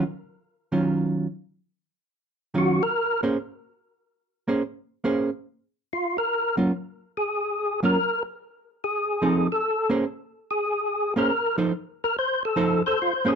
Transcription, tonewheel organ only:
2.58 F#4
2.83 A#4
5.93 F4
6.18 A#4
7.17 G#4
7.85 A#4
8.84 G#4
9.52 A4
10.51 G#4
11.19 A#4
12.04 A#4
12.19 C5
12.45 A4
12.86 A4 C5
13.02 F4
13.28 G#4

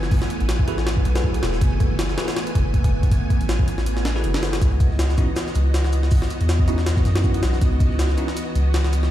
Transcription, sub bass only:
Already playing: F#1
0.41 A1
1.05 B1
1.43 E1
1.62 F#1
2.55 F#1
3.41 A1
4.24 F#1
4.62 C#2
5.55 C#2
6.41 E2
7.06 F#2
7.43 B1
7.62 C#2
8.55 C#2

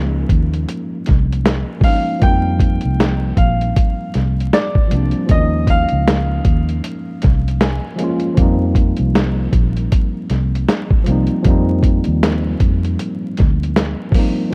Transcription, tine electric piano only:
Already playing: F3 G#3 A#3 C#4 D#4
1.80 F3 G#3
1.84 A#3 C#4 D#4
2.19 F3 G3 A#3
2.25 C4 D#4
4.88 F3 G3 A#3
4.94 C4 D4
5.26 F3 G#3
5.30 A#3 C#4 D4
5.41 D#4
7.61 G#5
7.96 F3 G#3 A#3
8.02 C#4 F4
8.34 F3 G3 A#3
8.40 C4 D#4
11.04 F3 G3 A#3
11.10 C4 D#4
11.42 F3 G3 A#3
11.48 C4 D#4
14.11 F3 G3
14.15 A#3 C4 D#4
14.50 F3

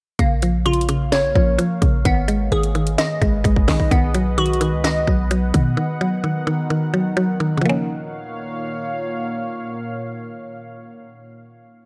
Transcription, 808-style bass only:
0.19 A#1
1.12 G#1
1.24 A#1
1.35 A#1
1.82 A#1
2.05 G#1
2.52 G#1
3.22 G#1
3.45 G#1
3.91 B1
4.73 C#2
5.08 B1
5.54 B2

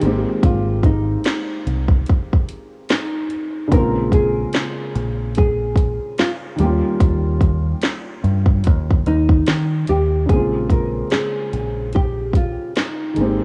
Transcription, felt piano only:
0.00 D#3 G#3 A#3
0.05 C4 G4
3.68 C#3 G#3
3.72 A#3 C4
3.77 F4
6.56 D#3 G3
6.60 A#3 C#4
6.65 F4
10.26 C#3 G#3
10.30 A#3 C4
10.35 F4
13.14 D#3 G#3
13.19 A#3 C4
13.23 G4

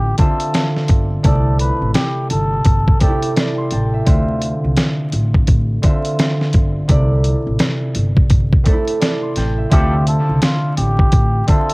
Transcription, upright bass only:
Already playing: A1
0.90 G1
1.25 C2
1.82 A1
2.31 G1
2.66 G1
3.72 A1
4.07 D2
4.64 C2
5.13 A1
5.48 A1
6.54 G1
6.89 C2
7.47 A1
7.96 G1
8.31 G1
9.37 A1
9.72 D2
10.29 C2
10.78 A1
11.13 A1

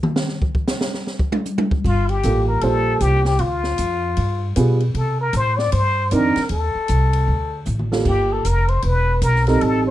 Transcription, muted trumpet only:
1.87 F4
2.10 G4
2.48 A#4
2.62 A4
3.02 G4
3.26 G4
3.40 F4
4.97 A4
5.21 A#4
5.37 C5
5.58 D5
5.73 C5
6.13 A#4
6.51 A4
8.07 G4
8.33 A4
8.46 A#4
8.69 C5
8.84 B4
9.23 A#4
9.48 A#4
9.61 A4
9.87 C5

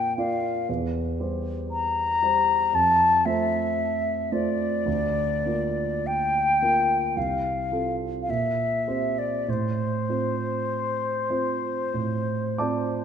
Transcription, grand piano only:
Already playing: A#2 A#3 F4 D5
0.18 A#3 F4 D5
0.69 E2
1.20 G3 G4 C5
2.23 G3 G4 C5
2.73 F2
3.26 A3 F4 C5
4.32 A3 F4 C5
4.86 D2
5.46 A#3 F4 A#4
6.62 A#3 F4 A#4
7.17 C2
7.72 C4 F4 A4
8.29 A#2
8.87 C4 G4 C5
9.48 A2
10.09 C4 F4 C5
11.30 C4 F4 C5
11.94 A2
12.58 C4 F4 C5 D5 A5 D6

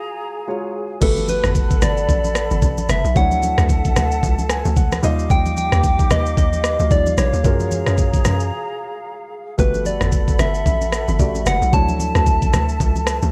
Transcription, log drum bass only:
1.02 G1
1.44 G1
1.82 G1
2.09 A1
2.51 G1
2.62 A1
2.89 F#1
3.04 B1
3.16 D2
3.58 D2
3.96 D2
4.23 C#2
4.65 D2
5.03 D#2
5.30 D#2
5.72 D#2
6.11 D#2
6.37 D#2
6.80 D2
6.91 D#2
7.18 A#1
7.33 D#2
7.44 F#2
7.87 F#2
8.25 F#2
9.59 G1
10.01 G1
10.39 G1
10.66 A1
11.08 G1
11.19 A1
11.46 F#1
11.62 B1
11.73 D2
12.15 D2
12.53 D2
12.80 C#2
13.23 D2

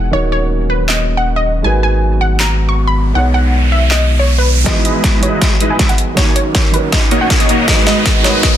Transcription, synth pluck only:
0.13 C#5
0.32 C#5
0.70 B4
0.88 D#5
1.17 F#5
1.36 D#5
1.64 G#5
1.83 G#5
2.21 F#5
2.40 A#5
2.69 C#6
2.87 B5
3.15 F#5
3.34 F#5
3.72 E5
3.91 D#5
4.19 C#5
4.38 B4
4.66 D#5
4.85 D#5
5.23 C#5
5.42 E5
5.70 G#5
5.89 F#5
6.17 C#5
6.36 C#5
6.74 B4
6.92 D#5
7.21 F#5
7.40 D#5
7.68 D#5
7.87 D#5
8.24 C#5
8.43 D#5

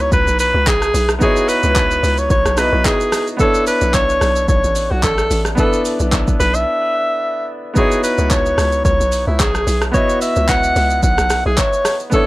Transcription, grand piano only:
Already playing: B3 D#4 E4 F#4 C#5
1.19 B3 D#4 E4
1.23 F#4 C#5
2.56 B3 D#4 E4 F#4 D#5
3.37 B3 D4 E4
3.41 A4 C#5
5.55 B3 D4 E4
5.59 A4 B4
7.74 B3 D#4 E4
7.78 F#4 C#5
9.91 B3 E4 D#5
9.96 F#4 E5
12.10 B3 D4 E4
12.14 A4 C#5

